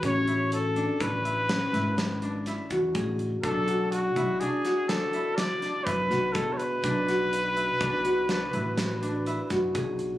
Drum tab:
HH |xxxxxxxxxxxxxx|xxxxxxxxxxxxxx|xxxxxxxxxxxxxx|
SD |------ooo-o---|-----oo-oo-o--|-o----o-o--o--|
BD |o---o------oo-|o--o------o-o-|o---o------oo-|